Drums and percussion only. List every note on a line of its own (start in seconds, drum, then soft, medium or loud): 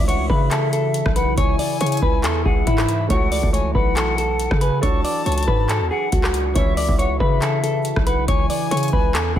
0.09 closed hi-hat medium
0.30 kick medium
0.51 clap loud
0.51 closed hi-hat medium
0.73 closed hi-hat medium
0.94 closed hi-hat medium
1.06 kick loud
1.06 cross-stick loud
1.16 closed hi-hat medium
1.38 kick loud
1.38 closed hi-hat medium
1.59 open hi-hat medium
1.81 closed hi-hat medium
1.86 closed hi-hat medium
1.92 closed hi-hat medium
1.97 closed hi-hat soft
2.02 kick loud
2.24 clap loud
2.24 closed hi-hat medium
2.45 kick loud
2.67 kick loud
2.67 closed hi-hat medium
2.78 cross-stick loud
2.78 clap loud
2.78 closed hi-hat medium
2.89 closed hi-hat medium
3.10 kick loud
3.10 closed hi-hat medium
3.32 open hi-hat medium
3.43 kick loud
3.54 closed hi-hat medium
3.75 kick loud
3.97 clap loud
3.97 closed hi-hat medium
4.18 closed hi-hat medium
4.40 closed hi-hat medium
4.51 kick loud
4.51 cross-stick loud
4.61 closed hi-hat medium
4.83 kick loud
4.83 closed hi-hat medium
5.05 open hi-hat medium
5.26 closed hi-hat medium
5.32 closed hi-hat medium
5.38 closed hi-hat medium
5.43 closed hi-hat medium
5.48 kick medium
5.69 clap loud
5.69 closed hi-hat medium
6.12 kick loud
6.12 closed hi-hat medium
6.24 cross-stick loud
6.24 clap loud
6.34 closed hi-hat medium
6.56 kick loud
6.56 closed hi-hat medium
6.77 open hi-hat medium
6.89 kick loud
6.99 closed hi-hat medium
7.20 kick loud
7.42 clap loud
7.42 closed hi-hat medium
7.64 closed hi-hat medium
7.85 closed hi-hat medium
7.96 kick loud
7.96 cross-stick loud
8.07 closed hi-hat medium
8.28 kick loud
8.28 closed hi-hat medium
8.50 open hi-hat medium
8.71 closed hi-hat medium
8.77 closed hi-hat medium
8.83 closed hi-hat medium
8.88 closed hi-hat soft
8.93 kick loud
9.15 clap loud
9.15 closed hi-hat medium